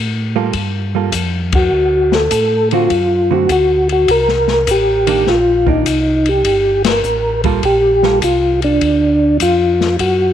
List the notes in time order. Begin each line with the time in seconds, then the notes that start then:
Already playing: A2
0.36 G3 A#3 F4 A4
0.53 G2, kick, ride
0.95 G3 A#3 F4 A4
1.12 F2, kick, hi-hat pedal, ride
1.52 F#4, kick, ride
1.72 D2
2.12 A4, snare
2.31 A2, kick, hi-hat pedal, ride
2.71 D3 A3 C4 F4 F#4, ride
2.90 F#2, kick, ride
3.31 D3 A3 C4 F#4
3.49 D2 F#4, kick, hi-hat pedal, ride
3.89 F#4, ride
4.08 C2 A#4, kick, ride
4.28 snare
4.48 snare
4.67 A1, kick, hi-hat pedal, ride
4.71 G4
5.07 D#3 A#3 D4, ride
5.26 A#1 F4, kick, snare
5.66 D#3 A#3 D4 D#4, kick
5.85 C2, kick, hi-hat pedal, ride
6.26 G4, ride
6.45 G1, kick, ride
6.84 A#4, snare, ride
7.04 A1, hi-hat pedal
7.44 G3 A#3 F4 A4, kick, ride
7.63 A#1 G4, kick, ride
8.03 G3 A#3 F4 A4, snare
8.22 C2 F4, kick, hi-hat pedal, ride
8.62 D4, ride
8.81 D2, kick, ride
9.40 F2 F4, kick, hi-hat pedal, ride
9.81 snare
9.99 F#2 F#4, kick, ride